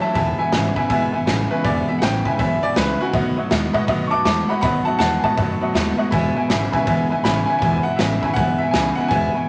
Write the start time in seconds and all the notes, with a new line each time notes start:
0.00 A2 F#3 A3 C#4 E4 C#5 E5 A5, muted upright bass stroke
0.14 E1 E2 B2 E3 G#3 B3 E4 B4 E5 G#5 A5, kick, open hi-hat
0.37 E2 B2 E3 G#3 B3 E4 B4 E5 G#5, muted upright bass stroke
0.52 G#1 E2 C#3 E3 G#3 B3 E4 B4 E5 G#5, snare, open hi-hat
0.76 E2 C#3 E3 G#3 B3 E4 B4 E5 G#5, kick
0.89 E1 E2 B2 E3 G#3 B3 E4 B4 E5 G#5, kick, open hi-hat
1.12 G#1 E2 B2 E3 G#3 B3 E4 B4 E5 G#5
1.26 A1 E2 C#3 E3 G#3 B3 E4 B4 E5 G#5, snare, open hi-hat
1.50 E2 C#3 E3 G#3 B3 E4 B4 E5 G#5
1.63 E1 E2 B2 E3 G#3 B3 E4 B4 D5 E5 G#5, kick, open hi-hat
1.87 E2 B2 E3 G#3 B3 E4 B4 E5 G#5, muted upright bass stroke
1.99 A1 E2 C#3 E3 G#3 B4 E5 F#5, snare, open hi-hat
2.03 B3 E4 G5 G#5
2.25 E2 C#3 E3 G#3 B3 E4 B4 E5 G#5, kick
2.38 B1 E2 B2 E3 G#3 B3 E4 B4 E5 G#5, kick, open hi-hat
2.62 E2 B2 E3 G#3 B3 E4 B4 D5 E5 G#5, muted upright bass stroke
2.75 C#2 E2 C#3 E3 G#3 B3 E4 B4 E5 G#5, snare, open hi-hat
2.99 E2 C#3 E3 G#3 B3 E4 F#4 B4 E5 G#5, muted upright bass stroke
3.13 B1 B2 D#3 F#3 A3 B3 F#4 B4 D#5 F#5, kick, open hi-hat
3.36 B2 F#3 A3 B3 F#4 B4 D#5 F#5, muted upright bass stroke
3.49 D#2 B2 D#3 G#3 A3 B3 F#4 B4 D#5 F#5, snare, open hi-hat
3.73 B2 G#3 A3 B3 F#4 B4 D#5 F#5, kick
3.87 B1 B2 D#3 F#3 A3 B3 F#4 B4 D#5 F#5, kick, open hi-hat
4.07 F#4 A5 C#6 D6
4.11 D#2 B2 F#3 A3 B3 B4 D#5 F#5
4.24 E2 B2 D#3 G#3 A3 B3 F#4 B4 D#5 F#5 A5 D6, snare, open hi-hat
4.48 B2 G#3 A3 B3 F#4 B4 D#5 F#5 B5, muted upright bass stroke
4.61 B1 B2 D#3 F#3 A3 B3 F#4 B4 D#5 F#5 A5 B5, kick, open hi-hat
4.85 B2 F#3 A3 B3 F#4 B4 D#5 F#5 A5, muted upright bass stroke
4.99 E2 B2 D#3 G#3 A3 B3 B4 D#5 F#5 A5, snare, open hi-hat
5.18 G#5
5.23 B2 G#3 A3 B3 F#4 B4 D#5 F#5 A5, muted upright bass stroke, kick
5.37 F#2 B2 D#3 F#3 A3 B3 F#4 B4 D#5 F#5, kick, open hi-hat
5.61 B2 F#3 A3 B3 F#4 B4 D#5 F#5, muted upright bass stroke
5.74 D#2 B2 D#3 G#3 A3 B3 F#4 B4 D#5 F#5, snare, open hi-hat
5.97 B2 G#3 A3 B3 F#4 B4 D#5 F#5, muted upright bass stroke
6.11 E1 E2 B2 E3 G#3 B3 E4 B4 E5 G#5, kick, open hi-hat
6.35 E2 B2 E3 G#3 B3 E4 B4 E5 G#5, muted upright bass stroke
6.48 G#1 E2 C#3 E3 G#3 B3 E4 B4 E5 G#5, snare, open hi-hat
6.72 E2 C#3 E3 G#3 B3 E4 B4 E5 G#5, kick
6.86 E1 E2 B2 E3 G#3 B3 E4 B4 E5 G#5, kick, open hi-hat
7.10 G#1 E2 B2 E3 G#3 B3 E4 B4 E5 G#5
7.24 A1 E2 C#3 E3 G#3 B3 E4 B4 E5 G#5 B5, snare, open hi-hat
7.46 E2 C#3 G#3 B3 E4 B4 E5 G#5
7.50 E3 G#5
7.59 E1 E2 B2 E3 G#3 B4 G#5, kick, open hi-hat
7.63 B3 E4 E5 G#5
7.83 E2 B2 G#3 B3 E4 B4 E5 F#5, muted upright bass stroke
7.87 E3 G#5
7.96 A1 E2 C#3 E3 G#3 B3 B4 E5, snare, open hi-hat
8.01 E4 G#5
8.21 E2 C#3 G#3 B3 E4 B4 E5 G#5, muted upright bass stroke, kick
8.25 E3
8.34 B1 E2 B2 E3 B4 E5 F#5, kick, open hi-hat
8.38 G#3 B3 E4 G#5
8.58 E2 B2 G#3 B3 E4 B4 E5, muted upright bass stroke
8.62 E3 G#5
8.71 C#2 E2 C#3 E3 G#3 B4 G#5, snare, open hi-hat
8.75 B3 E4 E5 G#5
8.96 E2 C#3 E3 G#3 B3 E4 B4 E5 F#5, muted upright bass stroke
9.00 G#5
9.08 E1 E2 B2 E3 G#3 B3 E4 B4 E5 G#5, kick, open hi-hat
9.13 G#5
9.34 E2 B2 E3 G#3 B3 E4 B4 E5 G#5, muted upright bass stroke